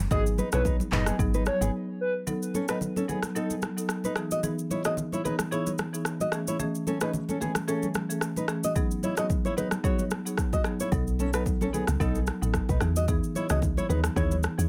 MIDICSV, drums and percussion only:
0, 0, Header, 1, 2, 480
1, 0, Start_track
1, 0, Tempo, 540541
1, 99, Time_signature, 4, 2, 24, 8
1, 13043, End_track
2, 0, Start_track
2, 0, Title_t, "Drums"
2, 96, Note_on_c, 9, 64, 84
2, 98, Note_on_c, 9, 36, 125
2, 99, Note_on_c, 9, 82, 83
2, 185, Note_off_c, 9, 64, 0
2, 187, Note_off_c, 9, 36, 0
2, 188, Note_off_c, 9, 82, 0
2, 234, Note_on_c, 9, 82, 57
2, 323, Note_off_c, 9, 82, 0
2, 338, Note_on_c, 9, 63, 79
2, 343, Note_on_c, 9, 82, 56
2, 427, Note_off_c, 9, 63, 0
2, 432, Note_off_c, 9, 82, 0
2, 464, Note_on_c, 9, 82, 88
2, 468, Note_on_c, 9, 37, 91
2, 553, Note_off_c, 9, 82, 0
2, 557, Note_off_c, 9, 37, 0
2, 575, Note_on_c, 9, 64, 80
2, 579, Note_on_c, 9, 36, 89
2, 582, Note_on_c, 9, 82, 61
2, 664, Note_off_c, 9, 64, 0
2, 667, Note_off_c, 9, 36, 0
2, 671, Note_off_c, 9, 82, 0
2, 710, Note_on_c, 9, 63, 85
2, 718, Note_on_c, 9, 82, 45
2, 799, Note_off_c, 9, 63, 0
2, 807, Note_off_c, 9, 82, 0
2, 818, Note_on_c, 9, 39, 100
2, 824, Note_on_c, 9, 45, 112
2, 826, Note_on_c, 9, 82, 56
2, 907, Note_off_c, 9, 39, 0
2, 912, Note_off_c, 9, 45, 0
2, 915, Note_off_c, 9, 82, 0
2, 945, Note_on_c, 9, 37, 100
2, 948, Note_on_c, 9, 63, 80
2, 949, Note_on_c, 9, 82, 90
2, 1033, Note_off_c, 9, 37, 0
2, 1037, Note_off_c, 9, 63, 0
2, 1038, Note_off_c, 9, 82, 0
2, 1058, Note_on_c, 9, 36, 127
2, 1063, Note_on_c, 9, 82, 78
2, 1146, Note_off_c, 9, 36, 0
2, 1152, Note_off_c, 9, 82, 0
2, 1190, Note_on_c, 9, 82, 60
2, 1192, Note_on_c, 9, 63, 77
2, 1279, Note_off_c, 9, 82, 0
2, 1281, Note_off_c, 9, 63, 0
2, 1294, Note_on_c, 9, 82, 57
2, 1298, Note_on_c, 9, 63, 83
2, 1302, Note_on_c, 9, 37, 93
2, 1383, Note_off_c, 9, 82, 0
2, 1387, Note_off_c, 9, 63, 0
2, 1391, Note_off_c, 9, 37, 0
2, 1437, Note_on_c, 9, 82, 99
2, 1526, Note_off_c, 9, 82, 0
2, 2016, Note_on_c, 9, 64, 80
2, 2018, Note_on_c, 9, 82, 74
2, 2104, Note_off_c, 9, 64, 0
2, 2107, Note_off_c, 9, 82, 0
2, 2153, Note_on_c, 9, 82, 53
2, 2242, Note_off_c, 9, 82, 0
2, 2257, Note_on_c, 9, 63, 77
2, 2262, Note_on_c, 9, 82, 53
2, 2346, Note_off_c, 9, 63, 0
2, 2350, Note_off_c, 9, 82, 0
2, 2383, Note_on_c, 9, 82, 83
2, 2387, Note_on_c, 9, 37, 81
2, 2471, Note_off_c, 9, 82, 0
2, 2476, Note_off_c, 9, 37, 0
2, 2495, Note_on_c, 9, 64, 73
2, 2502, Note_on_c, 9, 82, 58
2, 2583, Note_off_c, 9, 64, 0
2, 2590, Note_off_c, 9, 82, 0
2, 2630, Note_on_c, 9, 63, 81
2, 2637, Note_on_c, 9, 82, 45
2, 2719, Note_off_c, 9, 63, 0
2, 2726, Note_off_c, 9, 82, 0
2, 2745, Note_on_c, 9, 64, 65
2, 2745, Note_on_c, 9, 82, 53
2, 2833, Note_off_c, 9, 64, 0
2, 2834, Note_off_c, 9, 82, 0
2, 2864, Note_on_c, 9, 37, 88
2, 2868, Note_on_c, 9, 63, 77
2, 2869, Note_on_c, 9, 82, 83
2, 2953, Note_off_c, 9, 37, 0
2, 2956, Note_off_c, 9, 63, 0
2, 2958, Note_off_c, 9, 82, 0
2, 2983, Note_on_c, 9, 82, 70
2, 3072, Note_off_c, 9, 82, 0
2, 3110, Note_on_c, 9, 82, 55
2, 3112, Note_on_c, 9, 63, 75
2, 3199, Note_off_c, 9, 82, 0
2, 3201, Note_off_c, 9, 63, 0
2, 3214, Note_on_c, 9, 82, 53
2, 3218, Note_on_c, 9, 63, 81
2, 3223, Note_on_c, 9, 37, 90
2, 3303, Note_off_c, 9, 82, 0
2, 3306, Note_off_c, 9, 63, 0
2, 3311, Note_off_c, 9, 37, 0
2, 3357, Note_on_c, 9, 82, 92
2, 3445, Note_off_c, 9, 82, 0
2, 3453, Note_on_c, 9, 37, 86
2, 3459, Note_on_c, 9, 82, 75
2, 3541, Note_off_c, 9, 37, 0
2, 3548, Note_off_c, 9, 82, 0
2, 3587, Note_on_c, 9, 63, 71
2, 3592, Note_on_c, 9, 82, 54
2, 3676, Note_off_c, 9, 63, 0
2, 3681, Note_off_c, 9, 82, 0
2, 3691, Note_on_c, 9, 37, 90
2, 3697, Note_on_c, 9, 82, 53
2, 3780, Note_off_c, 9, 37, 0
2, 3785, Note_off_c, 9, 82, 0
2, 3830, Note_on_c, 9, 63, 55
2, 3830, Note_on_c, 9, 82, 95
2, 3918, Note_off_c, 9, 82, 0
2, 3919, Note_off_c, 9, 63, 0
2, 3935, Note_on_c, 9, 64, 78
2, 3938, Note_on_c, 9, 82, 76
2, 4024, Note_off_c, 9, 64, 0
2, 4027, Note_off_c, 9, 82, 0
2, 4073, Note_on_c, 9, 82, 56
2, 4162, Note_off_c, 9, 82, 0
2, 4178, Note_on_c, 9, 63, 74
2, 4182, Note_on_c, 9, 82, 51
2, 4266, Note_off_c, 9, 63, 0
2, 4271, Note_off_c, 9, 82, 0
2, 4304, Note_on_c, 9, 82, 82
2, 4308, Note_on_c, 9, 37, 81
2, 4392, Note_off_c, 9, 82, 0
2, 4397, Note_off_c, 9, 37, 0
2, 4414, Note_on_c, 9, 64, 74
2, 4422, Note_on_c, 9, 82, 58
2, 4503, Note_off_c, 9, 64, 0
2, 4511, Note_off_c, 9, 82, 0
2, 4550, Note_on_c, 9, 63, 82
2, 4558, Note_on_c, 9, 82, 45
2, 4639, Note_off_c, 9, 63, 0
2, 4647, Note_off_c, 9, 82, 0
2, 4664, Note_on_c, 9, 64, 67
2, 4666, Note_on_c, 9, 82, 52
2, 4753, Note_off_c, 9, 64, 0
2, 4755, Note_off_c, 9, 82, 0
2, 4785, Note_on_c, 9, 37, 94
2, 4788, Note_on_c, 9, 63, 79
2, 4789, Note_on_c, 9, 82, 84
2, 4873, Note_off_c, 9, 37, 0
2, 4877, Note_off_c, 9, 63, 0
2, 4878, Note_off_c, 9, 82, 0
2, 4903, Note_on_c, 9, 82, 72
2, 4992, Note_off_c, 9, 82, 0
2, 5030, Note_on_c, 9, 82, 56
2, 5033, Note_on_c, 9, 63, 74
2, 5119, Note_off_c, 9, 82, 0
2, 5122, Note_off_c, 9, 63, 0
2, 5135, Note_on_c, 9, 82, 53
2, 5139, Note_on_c, 9, 63, 80
2, 5143, Note_on_c, 9, 37, 89
2, 5224, Note_off_c, 9, 82, 0
2, 5227, Note_off_c, 9, 63, 0
2, 5232, Note_off_c, 9, 37, 0
2, 5277, Note_on_c, 9, 82, 94
2, 5366, Note_off_c, 9, 82, 0
2, 5373, Note_on_c, 9, 37, 85
2, 5380, Note_on_c, 9, 82, 76
2, 5462, Note_off_c, 9, 37, 0
2, 5469, Note_off_c, 9, 82, 0
2, 5507, Note_on_c, 9, 63, 69
2, 5512, Note_on_c, 9, 82, 56
2, 5596, Note_off_c, 9, 63, 0
2, 5601, Note_off_c, 9, 82, 0
2, 5611, Note_on_c, 9, 37, 89
2, 5617, Note_on_c, 9, 82, 52
2, 5700, Note_off_c, 9, 37, 0
2, 5706, Note_off_c, 9, 82, 0
2, 5750, Note_on_c, 9, 63, 55
2, 5750, Note_on_c, 9, 82, 93
2, 5839, Note_off_c, 9, 63, 0
2, 5839, Note_off_c, 9, 82, 0
2, 5856, Note_on_c, 9, 64, 78
2, 5859, Note_on_c, 9, 82, 73
2, 5944, Note_off_c, 9, 64, 0
2, 5947, Note_off_c, 9, 82, 0
2, 5993, Note_on_c, 9, 82, 56
2, 6082, Note_off_c, 9, 82, 0
2, 6098, Note_on_c, 9, 63, 77
2, 6102, Note_on_c, 9, 82, 52
2, 6187, Note_off_c, 9, 63, 0
2, 6191, Note_off_c, 9, 82, 0
2, 6223, Note_on_c, 9, 82, 80
2, 6228, Note_on_c, 9, 37, 83
2, 6312, Note_off_c, 9, 82, 0
2, 6317, Note_off_c, 9, 37, 0
2, 6336, Note_on_c, 9, 64, 73
2, 6342, Note_on_c, 9, 82, 57
2, 6424, Note_off_c, 9, 64, 0
2, 6431, Note_off_c, 9, 82, 0
2, 6471, Note_on_c, 9, 63, 83
2, 6478, Note_on_c, 9, 82, 44
2, 6560, Note_off_c, 9, 63, 0
2, 6567, Note_off_c, 9, 82, 0
2, 6585, Note_on_c, 9, 64, 69
2, 6586, Note_on_c, 9, 82, 51
2, 6674, Note_off_c, 9, 64, 0
2, 6675, Note_off_c, 9, 82, 0
2, 6705, Note_on_c, 9, 37, 93
2, 6708, Note_on_c, 9, 63, 77
2, 6709, Note_on_c, 9, 82, 84
2, 6793, Note_off_c, 9, 37, 0
2, 6797, Note_off_c, 9, 63, 0
2, 6798, Note_off_c, 9, 82, 0
2, 6823, Note_on_c, 9, 82, 69
2, 6912, Note_off_c, 9, 82, 0
2, 6950, Note_on_c, 9, 82, 55
2, 6953, Note_on_c, 9, 63, 75
2, 7039, Note_off_c, 9, 82, 0
2, 7042, Note_off_c, 9, 63, 0
2, 7055, Note_on_c, 9, 82, 52
2, 7059, Note_on_c, 9, 63, 80
2, 7063, Note_on_c, 9, 37, 86
2, 7143, Note_off_c, 9, 82, 0
2, 7147, Note_off_c, 9, 63, 0
2, 7152, Note_off_c, 9, 37, 0
2, 7197, Note_on_c, 9, 82, 91
2, 7286, Note_off_c, 9, 82, 0
2, 7293, Note_on_c, 9, 37, 86
2, 7300, Note_on_c, 9, 82, 77
2, 7382, Note_off_c, 9, 37, 0
2, 7389, Note_off_c, 9, 82, 0
2, 7427, Note_on_c, 9, 63, 74
2, 7432, Note_on_c, 9, 82, 57
2, 7516, Note_off_c, 9, 63, 0
2, 7520, Note_off_c, 9, 82, 0
2, 7531, Note_on_c, 9, 37, 84
2, 7537, Note_on_c, 9, 82, 53
2, 7620, Note_off_c, 9, 37, 0
2, 7625, Note_off_c, 9, 82, 0
2, 7670, Note_on_c, 9, 63, 56
2, 7670, Note_on_c, 9, 82, 95
2, 7758, Note_off_c, 9, 82, 0
2, 7759, Note_off_c, 9, 63, 0
2, 7775, Note_on_c, 9, 64, 74
2, 7778, Note_on_c, 9, 36, 114
2, 7778, Note_on_c, 9, 82, 81
2, 7864, Note_off_c, 9, 64, 0
2, 7867, Note_off_c, 9, 36, 0
2, 7867, Note_off_c, 9, 82, 0
2, 7913, Note_on_c, 9, 82, 58
2, 8002, Note_off_c, 9, 82, 0
2, 8018, Note_on_c, 9, 63, 75
2, 8022, Note_on_c, 9, 82, 53
2, 8107, Note_off_c, 9, 63, 0
2, 8111, Note_off_c, 9, 82, 0
2, 8143, Note_on_c, 9, 82, 82
2, 8147, Note_on_c, 9, 37, 82
2, 8232, Note_off_c, 9, 82, 0
2, 8236, Note_off_c, 9, 37, 0
2, 8255, Note_on_c, 9, 64, 72
2, 8258, Note_on_c, 9, 36, 84
2, 8261, Note_on_c, 9, 82, 57
2, 8344, Note_off_c, 9, 64, 0
2, 8347, Note_off_c, 9, 36, 0
2, 8350, Note_off_c, 9, 82, 0
2, 8390, Note_on_c, 9, 63, 80
2, 8398, Note_on_c, 9, 82, 42
2, 8479, Note_off_c, 9, 63, 0
2, 8487, Note_off_c, 9, 82, 0
2, 8505, Note_on_c, 9, 64, 72
2, 8506, Note_on_c, 9, 82, 51
2, 8594, Note_off_c, 9, 64, 0
2, 8595, Note_off_c, 9, 82, 0
2, 8625, Note_on_c, 9, 37, 94
2, 8629, Note_on_c, 9, 63, 75
2, 8629, Note_on_c, 9, 82, 83
2, 8713, Note_off_c, 9, 37, 0
2, 8717, Note_off_c, 9, 63, 0
2, 8718, Note_off_c, 9, 82, 0
2, 8738, Note_on_c, 9, 36, 114
2, 8743, Note_on_c, 9, 82, 69
2, 8827, Note_off_c, 9, 36, 0
2, 8832, Note_off_c, 9, 82, 0
2, 8870, Note_on_c, 9, 82, 56
2, 8873, Note_on_c, 9, 63, 71
2, 8959, Note_off_c, 9, 82, 0
2, 8962, Note_off_c, 9, 63, 0
2, 8975, Note_on_c, 9, 82, 55
2, 8979, Note_on_c, 9, 63, 75
2, 8983, Note_on_c, 9, 37, 90
2, 9064, Note_off_c, 9, 82, 0
2, 9067, Note_off_c, 9, 63, 0
2, 9072, Note_off_c, 9, 37, 0
2, 9117, Note_on_c, 9, 82, 91
2, 9206, Note_off_c, 9, 82, 0
2, 9213, Note_on_c, 9, 37, 90
2, 9218, Note_on_c, 9, 36, 81
2, 9220, Note_on_c, 9, 82, 75
2, 9302, Note_off_c, 9, 37, 0
2, 9307, Note_off_c, 9, 36, 0
2, 9309, Note_off_c, 9, 82, 0
2, 9348, Note_on_c, 9, 63, 69
2, 9351, Note_on_c, 9, 36, 104
2, 9352, Note_on_c, 9, 82, 57
2, 9437, Note_off_c, 9, 63, 0
2, 9440, Note_off_c, 9, 36, 0
2, 9441, Note_off_c, 9, 82, 0
2, 9451, Note_on_c, 9, 37, 89
2, 9457, Note_on_c, 9, 82, 52
2, 9540, Note_off_c, 9, 37, 0
2, 9546, Note_off_c, 9, 82, 0
2, 9590, Note_on_c, 9, 82, 94
2, 9591, Note_on_c, 9, 63, 52
2, 9679, Note_off_c, 9, 82, 0
2, 9680, Note_off_c, 9, 63, 0
2, 9696, Note_on_c, 9, 64, 77
2, 9698, Note_on_c, 9, 36, 116
2, 9699, Note_on_c, 9, 82, 76
2, 9785, Note_off_c, 9, 64, 0
2, 9787, Note_off_c, 9, 36, 0
2, 9787, Note_off_c, 9, 82, 0
2, 9834, Note_on_c, 9, 82, 56
2, 9923, Note_off_c, 9, 82, 0
2, 9938, Note_on_c, 9, 63, 77
2, 9943, Note_on_c, 9, 82, 53
2, 10026, Note_off_c, 9, 63, 0
2, 10032, Note_off_c, 9, 82, 0
2, 10064, Note_on_c, 9, 82, 83
2, 10068, Note_on_c, 9, 37, 82
2, 10153, Note_off_c, 9, 82, 0
2, 10157, Note_off_c, 9, 37, 0
2, 10175, Note_on_c, 9, 64, 74
2, 10179, Note_on_c, 9, 36, 82
2, 10182, Note_on_c, 9, 82, 58
2, 10264, Note_off_c, 9, 64, 0
2, 10267, Note_off_c, 9, 36, 0
2, 10271, Note_off_c, 9, 82, 0
2, 10310, Note_on_c, 9, 63, 79
2, 10318, Note_on_c, 9, 82, 45
2, 10399, Note_off_c, 9, 63, 0
2, 10407, Note_off_c, 9, 82, 0
2, 10424, Note_on_c, 9, 64, 70
2, 10426, Note_on_c, 9, 82, 55
2, 10513, Note_off_c, 9, 64, 0
2, 10515, Note_off_c, 9, 82, 0
2, 10544, Note_on_c, 9, 37, 94
2, 10547, Note_on_c, 9, 63, 76
2, 10549, Note_on_c, 9, 82, 84
2, 10633, Note_off_c, 9, 37, 0
2, 10636, Note_off_c, 9, 63, 0
2, 10638, Note_off_c, 9, 82, 0
2, 10657, Note_on_c, 9, 36, 117
2, 10663, Note_on_c, 9, 82, 69
2, 10746, Note_off_c, 9, 36, 0
2, 10751, Note_off_c, 9, 82, 0
2, 10790, Note_on_c, 9, 82, 56
2, 10792, Note_on_c, 9, 63, 76
2, 10879, Note_off_c, 9, 82, 0
2, 10881, Note_off_c, 9, 63, 0
2, 10894, Note_on_c, 9, 82, 53
2, 10898, Note_on_c, 9, 63, 80
2, 10902, Note_on_c, 9, 37, 89
2, 10983, Note_off_c, 9, 82, 0
2, 10987, Note_off_c, 9, 63, 0
2, 10991, Note_off_c, 9, 37, 0
2, 11037, Note_on_c, 9, 82, 92
2, 11125, Note_off_c, 9, 82, 0
2, 11132, Note_on_c, 9, 37, 86
2, 11138, Note_on_c, 9, 36, 82
2, 11139, Note_on_c, 9, 82, 78
2, 11221, Note_off_c, 9, 37, 0
2, 11227, Note_off_c, 9, 36, 0
2, 11228, Note_off_c, 9, 82, 0
2, 11267, Note_on_c, 9, 63, 72
2, 11271, Note_on_c, 9, 36, 103
2, 11271, Note_on_c, 9, 82, 57
2, 11356, Note_off_c, 9, 63, 0
2, 11359, Note_off_c, 9, 36, 0
2, 11360, Note_off_c, 9, 82, 0
2, 11371, Note_on_c, 9, 37, 89
2, 11376, Note_on_c, 9, 82, 54
2, 11459, Note_off_c, 9, 37, 0
2, 11465, Note_off_c, 9, 82, 0
2, 11509, Note_on_c, 9, 63, 57
2, 11510, Note_on_c, 9, 82, 98
2, 11598, Note_off_c, 9, 63, 0
2, 11598, Note_off_c, 9, 82, 0
2, 11614, Note_on_c, 9, 64, 82
2, 11618, Note_on_c, 9, 36, 112
2, 11618, Note_on_c, 9, 82, 77
2, 11703, Note_off_c, 9, 64, 0
2, 11707, Note_off_c, 9, 36, 0
2, 11707, Note_off_c, 9, 82, 0
2, 11754, Note_on_c, 9, 82, 57
2, 11842, Note_off_c, 9, 82, 0
2, 11857, Note_on_c, 9, 63, 73
2, 11862, Note_on_c, 9, 82, 56
2, 11946, Note_off_c, 9, 63, 0
2, 11951, Note_off_c, 9, 82, 0
2, 11983, Note_on_c, 9, 82, 86
2, 11988, Note_on_c, 9, 37, 79
2, 12072, Note_off_c, 9, 82, 0
2, 12077, Note_off_c, 9, 37, 0
2, 12095, Note_on_c, 9, 64, 74
2, 12098, Note_on_c, 9, 36, 83
2, 12102, Note_on_c, 9, 82, 58
2, 12183, Note_off_c, 9, 64, 0
2, 12187, Note_off_c, 9, 36, 0
2, 12191, Note_off_c, 9, 82, 0
2, 12230, Note_on_c, 9, 63, 79
2, 12238, Note_on_c, 9, 82, 47
2, 12319, Note_off_c, 9, 63, 0
2, 12327, Note_off_c, 9, 82, 0
2, 12344, Note_on_c, 9, 64, 68
2, 12346, Note_on_c, 9, 82, 53
2, 12433, Note_off_c, 9, 64, 0
2, 12435, Note_off_c, 9, 82, 0
2, 12465, Note_on_c, 9, 37, 99
2, 12468, Note_on_c, 9, 63, 74
2, 12469, Note_on_c, 9, 82, 85
2, 12553, Note_off_c, 9, 37, 0
2, 12556, Note_off_c, 9, 63, 0
2, 12558, Note_off_c, 9, 82, 0
2, 12578, Note_on_c, 9, 36, 119
2, 12583, Note_on_c, 9, 82, 71
2, 12667, Note_off_c, 9, 36, 0
2, 12672, Note_off_c, 9, 82, 0
2, 12711, Note_on_c, 9, 82, 57
2, 12712, Note_on_c, 9, 63, 77
2, 12799, Note_off_c, 9, 82, 0
2, 12801, Note_off_c, 9, 63, 0
2, 12815, Note_on_c, 9, 82, 55
2, 12818, Note_on_c, 9, 63, 79
2, 12823, Note_on_c, 9, 37, 90
2, 12904, Note_off_c, 9, 82, 0
2, 12907, Note_off_c, 9, 63, 0
2, 12912, Note_off_c, 9, 37, 0
2, 12958, Note_on_c, 9, 82, 94
2, 13043, Note_off_c, 9, 82, 0
2, 13043, End_track
0, 0, End_of_file